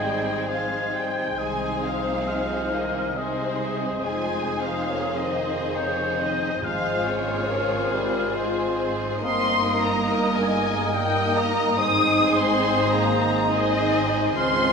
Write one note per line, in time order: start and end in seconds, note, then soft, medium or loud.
0.00 1.34 G#1 soft
0.00 1.35 G#2 soft
0.00 1.42 G#2 soft
0.00 1.16 D#3 soft
0.00 0.48 G3 soft
0.00 0.26 C4 soft
0.00 1.35 C4 soft
0.00 1.35 D#4 soft
0.00 0.72 G#4 soft
0.00 1.34 G#4 soft
0.00 1.34 C5 soft
0.00 0.48 D#5 soft
0.00 0.49 G5 soft
0.00 0.47 G#6 soft
0.04 0.48 G3 soft
0.04 0.49 D#4 soft
0.27 0.94 C4 soft
0.48 0.94 F3 soft
0.48 2.24 G#3 soft
0.48 1.61 D#4 soft
0.48 1.37 C5 soft
0.48 0.94 F5 soft
0.48 1.40 G#6 soft
0.73 3.36 G#4 soft
0.93 1.38 G3 soft
0.93 1.83 C4 soft
0.93 1.39 G5 medium
1.18 1.43 D#3 soft
1.37 4.00 C2 soft
1.37 4.00 C3 soft
1.37 4.07 C3 soft
1.37 1.82 G#3 soft
1.37 3.13 C4 soft
1.37 3.13 D#4 soft
1.37 3.13 G#4 soft
1.37 3.18 C5 soft
1.37 3.13 C5 soft
1.37 1.83 G#5 medium
1.37 2.29 D#6 soft
1.62 2.70 D#4 soft
1.84 2.73 F3 soft
1.84 2.26 C4 soft
1.84 2.73 F5 soft
2.06 2.44 A#3 soft
2.27 2.74 G#3 soft
2.27 2.92 C4 soft
2.27 3.19 F6 soft
2.49 3.80 G#3 soft
2.71 3.17 D#3 soft
2.71 3.17 A#3 soft
2.71 3.14 D#4 soft
2.71 3.17 D#5 soft
2.93 3.58 C4 soft
3.15 4.04 C3 soft
3.15 4.03 G#3 soft
3.15 4.02 C4 soft
3.15 4.24 D#4 soft
3.15 4.02 D#4 soft
3.15 4.03 G#4 soft
3.15 4.02 C5 medium
3.15 4.03 C5 soft
3.15 4.04 D#5 soft
3.15 4.04 D#6 soft
3.37 5.95 G#4 soft
3.60 4.45 C4 soft
3.82 7.69 G#3 soft
4.03 6.60 F1 soft
4.03 6.67 F2 soft
4.03 6.59 F2 soft
4.03 4.61 G#3 soft
4.03 4.92 G#3 soft
4.03 6.59 C4 soft
4.03 6.60 D#4 soft
4.03 6.60 G#4 soft
4.03 4.90 C5 soft
4.03 6.60 C5 soft
4.03 4.61 G#5 medium
4.03 5.47 D#6 soft
4.25 5.30 D#4 soft
4.46 4.88 C4 soft
4.61 5.17 F3 soft
4.61 5.18 F5 medium
4.68 5.04 A#3 soft
4.89 6.37 A#3 soft
4.89 5.52 C4 soft
4.89 5.19 C#5 soft
5.10 6.39 C3 soft
5.19 5.77 D#3 soft
5.19 5.76 D#5 medium
5.31 5.73 D#4 soft
5.31 6.34 C5 soft
5.53 6.17 C4 soft
5.75 6.20 C#3 medium
5.75 6.66 D#4 soft
5.75 6.20 C#5 medium
5.75 6.66 G6 soft
5.96 8.54 G#4 soft
6.18 6.48 D#3 medium
6.18 7.04 C4 soft
6.18 6.64 D#5 medium
6.40 6.66 C3 soft
6.62 9.18 G#1 soft
6.62 9.26 G#2 soft
6.62 7.89 G#2 medium
6.62 9.19 G#2 medium
6.62 7.06 F3 medium
6.62 7.53 G#3 soft
6.62 9.19 C4 soft
6.62 9.19 F4 soft
6.62 9.20 G#4 medium
6.62 7.51 C5 soft
6.62 9.19 C5 medium
6.62 7.08 F5 medium
6.62 7.51 F6 soft
6.84 7.90 F4 soft
7.05 7.92 C#3 medium
7.05 7.47 C4 soft
7.05 7.94 C#5 medium
7.27 7.65 A#3 soft
7.49 7.93 F3 medium
7.49 8.11 C4 soft
7.49 8.37 A#4 soft
7.53 8.36 F6 soft
7.71 8.98 G#3 soft
7.91 8.35 C3 soft
7.91 8.38 G3 medium
7.91 8.33 F4 soft
7.91 8.35 C5 medium
8.13 8.77 C4 soft
8.34 9.23 G#3 soft
8.34 9.25 F4 soft
8.34 9.20 C5 soft
8.34 9.21 C6 medium
8.55 9.25 G#4 soft
8.78 9.26 C4 soft
8.99 9.25 G#3 soft
9.21 11.78 G1 medium
9.21 11.81 G2 medium
9.21 11.78 G2 medium
9.21 10.91 A#3 medium
9.21 11.75 A#3 medium
9.21 9.75 C4 medium
9.21 10.93 D#4 medium
9.21 11.79 A#4 medium
9.21 10.94 A#4 medium
9.21 10.91 D#5 medium
9.21 9.77 C6 medium
9.21 14.04 D#6 medium
9.44 10.49 D#4 soft
9.65 10.06 A#3 soft
9.79 10.37 A#3 medium
9.79 10.37 A#5 medium
9.87 10.23 G#3 soft
10.08 10.71 A#3 soft
10.29 11.55 G3 soft
10.36 10.93 G#3 medium
10.36 10.93 G#5 medium
10.51 10.93 D#4 soft
10.72 11.35 A#3 soft
10.93 11.37 G3 medium
10.93 11.77 A#3 medium
10.93 11.97 D#4 medium
10.93 11.77 D#4 medium
10.93 11.77 A#4 medium
10.93 11.77 D#5 medium
10.93 11.36 G5 medium
11.15 11.82 A#4 soft
11.35 11.81 A#3 soft
11.35 11.79 A#3 medium
11.35 11.78 A#5 medium
11.57 11.81 G3 soft
11.77 14.32 G#1 medium
11.77 14.32 G#2 medium
11.77 14.39 G#2 medium
11.77 14.73 G#3 medium
11.77 13.48 C4 medium
11.77 12.33 D#4 medium
11.77 13.47 D#4 medium
11.77 13.48 G#4 medium
11.77 14.73 C5 medium
11.77 13.48 C5 medium
11.77 12.33 D#6 medium
11.99 13.04 D#4 soft
12.20 12.62 C4 soft
12.32 12.91 C4 medium
12.32 12.92 C6 medium
12.41 12.79 A#3 soft
12.63 13.26 C4 soft
12.84 14.12 D#3 soft
12.89 13.50 A#3 medium
12.89 13.48 A#5 medium
13.05 13.48 D#4 soft
13.27 13.91 C4 soft
13.47 14.36 D#3 medium
13.47 14.34 C4 medium
13.47 14.39 D#4 soft
13.47 14.34 D#4 medium
13.47 14.33 G#4 medium
13.47 14.33 C5 medium
13.47 14.35 D#5 medium
13.71 14.73 G#4 soft
13.92 14.73 C4 soft
14.14 14.39 D#3 soft
14.34 14.73 C#2 medium
14.34 14.73 C#3 medium
14.34 14.73 C4 medium
14.34 14.73 F4 medium
14.34 14.73 G#4 medium
14.34 14.73 C5 medium
14.34 14.73 C6 medium
14.34 14.73 F6 medium
14.57 14.73 F4 soft